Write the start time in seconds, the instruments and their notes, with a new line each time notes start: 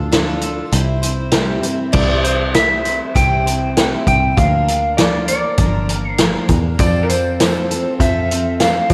Already playing: picked electric bass D2, twelve-string acoustic guitar D4 F4 A4
0.12 twelve-string acoustic guitar D3 F3 D4 F4 A4, snare, closed hi-hat
0.41 twelve-string acoustic guitar F4 A4, closed hi-hat
0.46 twelve-string acoustic guitar D4
0.72 picked electric bass C2, twelve-string acoustic guitar G3 C4 E4 C5, closed hi-hat
1.02 twelve-string acoustic guitar E4 C5, closed hi-hat
1.06 twelve-string acoustic guitar C4
1.31 twelve-string acoustic guitar C3 G3 C4 E4 C5, snare, closed hi-hat
1.63 picked electric bass G2, twelve-string acoustic guitar C4 E4 C5, closed hi-hat
1.92 picked electric bass C2, twelve-string acoustic guitar C3 G3 C4 E4 C5, electric slide guitar D5, kick, crash
2.23 twelve-string acoustic guitar C4 E4 C5, electric slide guitar C5, closed hi-hat
2.54 twelve-string acoustic guitar G3 C4 E4 C5, electric slide guitar E5, snare, closed hi-hat
2.85 twelve-string acoustic guitar C4 E4 C5, closed hi-hat
3.15 picked electric bass C2, twelve-string acoustic guitar C3 G3 C4 E4 C5, electric slide guitar G5, kick, closed hi-hat
3.46 twelve-string acoustic guitar C4 E4 C5, closed hi-hat
3.77 twelve-string acoustic guitar G3 C4 E4 C5, snare, closed hi-hat
4.07 picked electric bass C2, twelve-string acoustic guitar C4 E4 C5, electric slide guitar G5, kick, closed hi-hat
4.37 picked electric bass D2, twelve-string acoustic guitar D3 F3 A#3 D4 A#4, electric slide guitar F5, kick, closed hi-hat
4.68 twelve-string acoustic guitar A#3 D4 A#4, closed hi-hat
4.97 twelve-string acoustic guitar F3 A#3 D4 A#4, electric slide guitar D5, snare, closed hi-hat
5.28 twelve-string acoustic guitar A#3 D4 A#4, electric slide guitar D5, closed hi-hat
5.58 picked electric bass G1, twelve-string acoustic guitar D3 F3 A#3 D4 A#4, kick, closed hi-hat
5.89 twelve-string acoustic guitar A#3 D4 A#4, closed hi-hat
6.08 electric slide guitar C5
6.18 twelve-string acoustic guitar F3 A#3 D4 A#4, snare, closed hi-hat
6.49 picked electric bass E2, twelve-string acoustic guitar A#3 D4 A#4, kick, closed hi-hat
6.79 picked electric bass F2, twelve-string acoustic guitar F3 C4 F4 A4, electric slide guitar D5, kick, closed hi-hat, tambourine
6.96 tambourine
7.03 electric slide guitar A#4
7.09 twelve-string acoustic guitar C4 F4 A4, electric slide guitar C5, closed hi-hat, tambourine
7.40 twelve-string acoustic guitar F3 C4 F4, snare, closed hi-hat, tambourine
7.44 twelve-string acoustic guitar A4
7.56 tambourine
7.71 twelve-string acoustic guitar C4 F4 A4, closed hi-hat, tambourine
8.00 picked electric bass F2, twelve-string acoustic guitar F3 C4 F4 A4, electric slide guitar E5, kick, closed hi-hat, tambourine
8.31 twelve-string acoustic guitar C4 F4 A4, closed hi-hat
8.60 twelve-string acoustic guitar F3 C4 F4 A4, electric slide guitar F5, snare, closed hi-hat, tambourine
8.90 picked electric bass F3, twelve-string acoustic guitar A4, electric slide guitar D5, kick, closed hi-hat